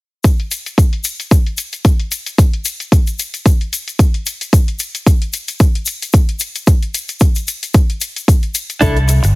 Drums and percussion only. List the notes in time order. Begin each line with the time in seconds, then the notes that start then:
0.24 kick, closed hi-hat, shaker
0.40 closed hi-hat
0.51 closed hi-hat, shaker
0.66 closed hi-hat, shaker
0.78 kick, closed hi-hat, shaker
0.93 closed hi-hat
1.04 closed hi-hat, shaker
1.20 closed hi-hat, shaker
1.31 kick, closed hi-hat, shaker
1.46 closed hi-hat
1.57 closed hi-hat, shaker
1.73 closed hi-hat, shaker
1.85 kick, closed hi-hat, shaker
2.00 closed hi-hat
2.12 closed hi-hat, shaker
2.26 closed hi-hat, shaker
2.38 kick, closed hi-hat, shaker
2.53 closed hi-hat
2.65 closed hi-hat, shaker
2.80 closed hi-hat, shaker
2.92 kick, closed hi-hat, shaker
3.07 closed hi-hat, shaker
3.19 closed hi-hat, shaker
3.34 closed hi-hat, shaker
3.46 kick, closed hi-hat, shaker
3.61 closed hi-hat
3.73 closed hi-hat, shaker
3.88 closed hi-hat, shaker
3.99 kick, closed hi-hat, shaker
4.14 closed hi-hat
4.26 closed hi-hat, shaker
4.41 closed hi-hat, shaker
4.53 kick, closed hi-hat, shaker
4.68 closed hi-hat
4.79 closed hi-hat, shaker
4.95 closed hi-hat, shaker
5.06 kick, closed hi-hat, shaker
5.22 closed hi-hat
5.33 closed hi-hat, shaker
5.48 closed hi-hat, shaker
5.60 kick, closed hi-hat, shaker
5.75 closed hi-hat
5.86 closed hi-hat, shaker
6.02 closed hi-hat, shaker
6.13 kick, closed hi-hat, shaker
6.29 closed hi-hat
6.40 closed hi-hat, shaker
6.55 closed hi-hat, shaker
6.67 kick, closed hi-hat, shaker
6.83 closed hi-hat
6.94 closed hi-hat, shaker
7.08 closed hi-hat, shaker
7.20 kick, closed hi-hat, shaker
7.35 closed hi-hat, shaker
7.48 closed hi-hat, shaker
7.63 closed hi-hat, shaker
7.74 kick, closed hi-hat, shaker
7.90 closed hi-hat
8.01 closed hi-hat, shaker
8.16 closed hi-hat, shaker
8.28 kick, closed hi-hat, shaker
8.43 closed hi-hat
8.55 closed hi-hat, shaker
8.70 closed hi-hat, shaker
8.81 kick, closed hi-hat, shaker
8.97 closed hi-hat
9.08 closed hi-hat, shaker
9.24 closed hi-hat, shaker